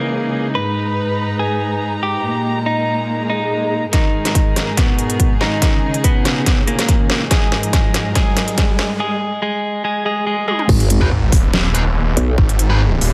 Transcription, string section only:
0, 0, Header, 1, 2, 480
1, 0, Start_track
1, 0, Key_signature, 5, "minor"
1, 0, Tempo, 422535
1, 624, Time_signature, 4, 2, 24, 8
1, 14917, End_track
2, 0, Start_track
2, 0, Title_t, "String section"
2, 0, Program_c, 0, 48
2, 0, Note_on_c, 0, 49, 72
2, 0, Note_on_c, 0, 52, 67
2, 0, Note_on_c, 0, 56, 64
2, 0, Note_on_c, 0, 63, 65
2, 0, Note_on_c, 0, 68, 80
2, 585, Note_off_c, 0, 68, 0
2, 604, Note_off_c, 0, 49, 0
2, 604, Note_off_c, 0, 52, 0
2, 624, Note_on_c, 0, 44, 72
2, 624, Note_on_c, 0, 71, 80
2, 625, Note_on_c, 0, 82, 66
2, 2498, Note_off_c, 0, 56, 0
2, 2525, Note_off_c, 0, 44, 0
2, 2525, Note_off_c, 0, 71, 0
2, 2544, Note_on_c, 0, 46, 75
2, 2544, Note_on_c, 0, 56, 65
2, 2544, Note_on_c, 0, 58, 67
2, 4418, Note_off_c, 0, 63, 0
2, 4426, Note_off_c, 0, 82, 0
2, 4444, Note_off_c, 0, 56, 0
2, 4444, Note_off_c, 0, 58, 0
2, 4445, Note_off_c, 0, 46, 0
2, 4463, Note_on_c, 0, 68, 80
2, 4463, Note_on_c, 0, 70, 69
2, 4464, Note_on_c, 0, 44, 72
2, 4464, Note_on_c, 0, 56, 68
2, 4464, Note_on_c, 0, 63, 69
2, 6364, Note_off_c, 0, 44, 0
2, 6364, Note_off_c, 0, 70, 0
2, 6384, Note_on_c, 0, 49, 75
2, 6384, Note_on_c, 0, 61, 67
2, 8284, Note_off_c, 0, 49, 0
2, 8285, Note_off_c, 0, 61, 0
2, 8303, Note_on_c, 0, 44, 79
2, 8303, Note_on_c, 0, 70, 71
2, 10178, Note_off_c, 0, 56, 0
2, 10178, Note_off_c, 0, 63, 0
2, 10178, Note_off_c, 0, 68, 0
2, 10204, Note_off_c, 0, 44, 0
2, 10204, Note_off_c, 0, 70, 0
2, 12144, Note_on_c, 0, 63, 73
2, 12145, Note_on_c, 0, 59, 79
2, 12145, Note_on_c, 0, 68, 88
2, 14917, Note_off_c, 0, 59, 0
2, 14917, Note_off_c, 0, 63, 0
2, 14917, Note_off_c, 0, 68, 0
2, 14917, End_track
0, 0, End_of_file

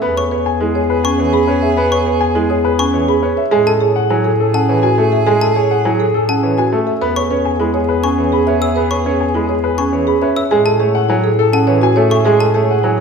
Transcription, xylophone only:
0, 0, Header, 1, 2, 480
1, 0, Start_track
1, 0, Key_signature, 4, "major"
1, 0, Tempo, 582524
1, 23, Time_signature, 3, 2, 24, 8
1, 10715, End_track
2, 0, Start_track
2, 0, Title_t, "Xylophone"
2, 0, Program_c, 0, 13
2, 144, Note_on_c, 0, 85, 65
2, 299, Note_off_c, 0, 85, 0
2, 863, Note_on_c, 0, 85, 67
2, 1019, Note_off_c, 0, 85, 0
2, 1581, Note_on_c, 0, 85, 62
2, 1738, Note_off_c, 0, 85, 0
2, 2301, Note_on_c, 0, 85, 71
2, 2458, Note_off_c, 0, 85, 0
2, 3023, Note_on_c, 0, 81, 71
2, 3179, Note_off_c, 0, 81, 0
2, 3744, Note_on_c, 0, 81, 62
2, 3899, Note_off_c, 0, 81, 0
2, 4461, Note_on_c, 0, 81, 66
2, 4618, Note_off_c, 0, 81, 0
2, 5182, Note_on_c, 0, 81, 61
2, 5339, Note_off_c, 0, 81, 0
2, 5903, Note_on_c, 0, 85, 66
2, 6059, Note_off_c, 0, 85, 0
2, 6621, Note_on_c, 0, 85, 66
2, 6778, Note_off_c, 0, 85, 0
2, 7101, Note_on_c, 0, 88, 61
2, 7258, Note_off_c, 0, 88, 0
2, 7340, Note_on_c, 0, 85, 61
2, 7498, Note_off_c, 0, 85, 0
2, 8059, Note_on_c, 0, 85, 63
2, 8217, Note_off_c, 0, 85, 0
2, 8541, Note_on_c, 0, 88, 57
2, 8698, Note_off_c, 0, 88, 0
2, 8781, Note_on_c, 0, 81, 66
2, 8938, Note_off_c, 0, 81, 0
2, 9504, Note_on_c, 0, 81, 73
2, 9659, Note_off_c, 0, 81, 0
2, 9981, Note_on_c, 0, 85, 64
2, 10138, Note_off_c, 0, 85, 0
2, 10221, Note_on_c, 0, 81, 63
2, 10378, Note_off_c, 0, 81, 0
2, 10715, End_track
0, 0, End_of_file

